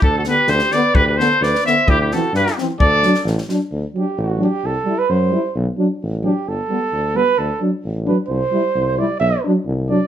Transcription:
<<
  \new Staff \with { instrumentName = "Trumpet" } { \time 2/4 \key d \mixolydian \tempo 4 = 130 a'16 a'16 b'8 c''8 d''8 | b'16 b'16 c''8 d''8 e''8 | g'16 g'16 a'8 b'8 r8 | d''4 r4 |
r2 | r2 | r2 | r2 |
r2 | r2 | r2 | }
  \new Staff \with { instrumentName = "Trumpet" } { \time 2/4 \key d \mixolydian d'16 fis'16 g'8 g'8 b'8 | g'16 g'16 a'8 b'8 c''8 | e'16 e'16 fis'8 g'8 r8 | a'4 r4 |
r8 g'8 fis'8 g'8 | a'8. b'16 c''4 | r4. g'8 | a'4. b'8 |
a'8 r4 b'8 | c''4. d''8 | e''8 r4 d''8 | }
  \new Staff \with { instrumentName = "French horn" } { \time 2/4 \key d \mixolydian r8 b8 r8 b8 | r8 b8 r8 b8 | r8 c'8 r8 c'8 | r8 d'8 r8 d'8 |
r8 d'8 r8 d'8 | r8 e'8 r8 e'8 | r8 d'8 r8 d'8 | r8 b8 r8 b8 |
r8 d'8 r8 d'8 | r8 e'8 r8 e'8 | r8 d'8 r8 d'8 | }
  \new Staff \with { instrumentName = "Euphonium" } { \clef bass \time 2/4 \key d \mixolydian r8 d8 r8 d8 | r8 d8 r8 d8 | r8 e8 r8 e8 | r8 fis8 r8 fis8 |
r8 fis8 r8 fis8 | r8 g8 r8 g8 | r8 fis8 r8 fis8 | r8 g8 r8 g8 |
r8 fis8 r8 fis8 | r8 g8 r8 g8 | r8 fis8 r8 fis8 | }
  \new Staff \with { instrumentName = "Tuba" } { \clef bass \time 2/4 \key d \mixolydian d,4 d,8 r8 | d,4 d,8 r8 | d,4 g,8 r8 | d,4 a,,8 r8 |
d,8 r8 a,,4 | c,8 r8 fis,4 | b,,8 r8 a,,4 | g,,8 r8 d,4 |
d,8 r8 a,,4 | c,8 r8 c,4 | b,,8 r8 c,4 | }
  \new DrumStaff \with { instrumentName = "Drums" } \drummode { \time 2/4 bd8 sn8 sn16 sn16 sn8 | bd8 sn8 sn16 sn16 sn8 | bd8 sn8 sn16 sn16 sn8 | bd8 sn16 sn16 sn16 sn16 sn8 |
r4 r4 | r4 r4 | r4 r4 | r4 r4 |
r4 r4 | r4 r4 | r4 r4 | }
>>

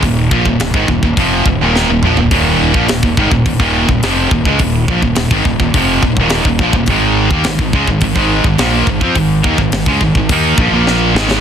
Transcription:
<<
  \new Staff \with { instrumentName = "Distorted electric guitar" } { \clef bass \time 4/4 \key ees \mixolydian \tempo 4 = 105 <ees, bes,>8 <bes, f>16 <ees, bes,>16 <ees, bes,>16 <aes, ees>16 <ees, bes,>16 <ees, bes,>16 <f, c f>8 <ees, bes,>16 <ees, bes, ees>8 <ees, bes,>16 <bes, f>16 <ees, bes,>16 | <ees, bes, ees>8. <bes, f>16 <ees, bes,>16 <ees, bes,>16 <aes, ees>16 <ees, bes,>16 <ees, bes,>16 <ees, bes, ees>8 <ees, bes,>16 <f, c f>8 <ees, bes,>16 <des aes>16 | <ees, bes,>8 <bes, f>16 <ees, bes,>16 <ees, bes,>16 <aes, ees>16 <ees, bes,>16 <ees, bes,>16 <f, c f>8 <ees, bes,>16 <ees, bes, ees>8 <ees, bes,>16 <bes, f>16 <ees, bes,>16 | <aes, ees aes>8. <ees bes>16 <aes, ees>16 <aes, ees>16 <des aes>16 <aes, ees>16 <aes, ees>16 <aes, ees aes>8 <aes, ees>16 <bes, f bes>8 <aes, ees>16 <f c'>16 |
<aes, ees>8 <ees bes>16 <aes, ees>16 <aes, ees>16 <des aes>16 <aes, ees>16 <aes, ees>16 <ees bes ees'>8 <bes, f>16 <bes, f bes>8. <aes, ees aes>8 | }
  \new Staff \with { instrumentName = "Distorted electric guitar" } { \clef bass \time 4/4 \key ees \mixolydian <ees, bes,>8 <bes, f>16 <ees, bes,>16 <ees, bes,>16 <aes, ees>16 <ees, bes,>16 <ees, bes,>16 <f, c f>8 <ees, bes,>16 <ees, bes, ees>8 <ees, bes,>16 <bes, f>16 <ees, bes,>16 | <ees, bes, ees>8. <bes, f>16 <ees, bes,>16 <ees, bes,>16 <aes, ees>16 <ees, bes,>16 <ees, bes,>16 <ees, bes, ees>8 <ees, bes,>16 <f, c f>8 <ees, bes,>16 <des aes>16 | <ees, bes,>8 <bes, f>16 <ees, bes,>16 <ees, bes,>16 <aes, ees>16 <ees, bes,>16 <ees, bes,>16 <f, c f>8 <ees, bes,>16 <ees, bes, ees>8 <ees, bes,>16 <bes, f>16 <ees, bes,>16 | <aes, ees aes>8. <ees bes>16 <aes, ees>16 <aes, ees>16 <des aes>16 <aes, ees>16 <aes, ees>16 <aes, ees aes>8 <aes, ees>16 <bes, f bes>8 <aes, ees>16 <f c'>16 |
<aes, ees>8 <ees bes>16 <aes, ees>16 <aes, ees>16 <des aes>16 <aes, ees>16 <aes, ees>16 <ees bes ees'>8 <bes, f>16 <bes, f bes>8. <aes, ees aes>8 | }
  \new Staff \with { instrumentName = "Fingered electric bass" } { \clef bass \time 4/4 \key ees \mixolydian ees,,8 bes,,16 ees,,16 ees,,16 aes,,16 ees,,16 ees,,16 f,,8 ees,,16 ees,,8 ees,,16 bes,,16 ees,,16 | ees,,8. bes,,16 ees,,16 ees,,16 aes,,16 ees,,16 ees,,16 ees,,8 ees,,16 f,,8 ees,,16 des,16 | ees,,8 bes,,16 ees,,16 ees,,16 aes,,16 ees,,16 ees,,16 f,,8 ees,,16 ees,,8 ees,,16 bes,,16 ees,,16 | aes,,8. ees,16 aes,,16 aes,,16 des,16 aes,,16 aes,,16 aes,,8 aes,,16 bes,,8 aes,,16 f,16 |
aes,,8 ees,16 aes,,16 aes,,16 des,16 aes,,16 aes,,16 ees,8 bes,,16 bes,,8. aes,,8 | }
  \new DrumStaff \with { instrumentName = "Drums" } \drummode { \time 4/4 <hho bd>8 bd16 bd16 <hho sn>16 bd16 bd16 bd16 <hho bd>8 bd8 sn8 toml16 tomfh16 | <hho bd>8. bd16 <hho sn>16 bd16 bd16 bd16 <hho bd>16 bd8 bd16 <hho sn>8 bd16 bd16 | <hho bd>8 bd16 bd16 <hho sn>16 bd16 bd16 bd16 <hho bd>8 bd16 bd16 <hho sn>16 bd16 bd16 bd16 | <hho bd>8. bd16 <hho sn>16 bd16 bd16 bd16 <hho bd>16 bd8 bd16 <hho sn>8 bd16 bd16 |
<hho bd>8 bd16 bd16 <hho sn>16 bd16 bd16 bd16 <hho bd>8 bd8 sn8 sn16 sn16 | }
>>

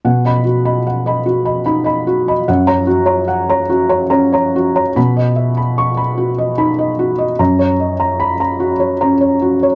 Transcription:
<<
  \new Staff \with { instrumentName = "Felt piano" } { \time 3/4 \key b \major \tempo 4 = 74 << { r16 b''16 r2 r8 | r16 ais''16 r2 r8 | r4 cis'''16 r4. r16 | r4 b''16 r4. r16 | } \\ { fis''16 dis''16 fis'16 <dis'' b''>16 fis''16 <dis'' b''>16 fis'16 <dis'' b''>16 b''16 <dis'' b''>16 fis'16 <dis'' b''>16 | fis''16 cis''16 fis'16 <cis'' ais''>16 fis''16 <cis'' ais''>16 fis'16 <cis'' ais''>16 ais''16 <cis'' ais''>16 fis'16 <cis'' ais''>16 | b''16 dis''16 e''16 b''8 b''16 fis'16 dis''16 b''16 dis''16 fis'16 dis''16 | ais''16 cis''16 dis''16 ais''8 ais''16 fis'16 cis''16 ais''16 cis''16 fis'16 cis''16 | } >> }
  \new Staff \with { instrumentName = "Felt piano" } { \clef bass \time 3/4 \key b \major b,2 dis'4 | fis,2 cis'4 | b,2 dis'4 | fis,2 cis'4 | }
>>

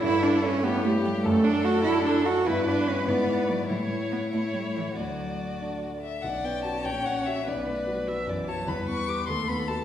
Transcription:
<<
  \new Staff \with { instrumentName = "Violin" } { \time 6/8 \key d \major \tempo 4. = 98 e'4. g'4. | a'2. | b'2. | e'2. |
fis'2~ fis'16 r16 e''8 | \key b \minor fis''8 g''8 a''8 g''8 fis''8 e''8 | d''2 r8 a''8 | b''8 cis'''8 d'''8 c'''8 b''8 a''8 | }
  \new Staff \with { instrumentName = "Viola" } { \time 6/8 \key d \major a'4. g'4. | a'2. | b'4. d''4. | cis''4. cis''4. |
d''2~ d''8 r8 | \key b \minor d''4. cis''4. | b'4. e''8 d''8 cis''8 | b'4. a'4. | }
  \new Staff \with { instrumentName = "Grand piano" } { \time 6/8 \key d \major g,4. <a e' cis''>4. | fis,4. <a fis' d''>4. | <g, b e' e''>4. <gis, b e' d''>4. | a,4. <a e' cis''>4. |
d,4. <a d' d''>4. | \key b \minor b,,8 b8 <fis' d''>8 ais,,8 cis'8 <fis' e''>8 | b,,8 b8 <fis' b'>8 <fis' b'>8 fis,8 <fis' b'>8 | e,8 b8 <g' b'>8 dis,8 b8 <fis' a'>8 | }
  \new Staff \with { instrumentName = "Cello" } { \time 6/8 \key d \major e'8 d'8 cis'8 b8 a8 g8 | a8 d'8 fis'8 e'8 d'8 fis'8 | e'8 d'8 cis'8 b4 fis8 | g8 a8 b8 a8 g8 e8 |
fis4. r4. | \key b \minor cis'2. | b8 a8 g8 fis8 e8 fis8 | g4. a4. | }
>>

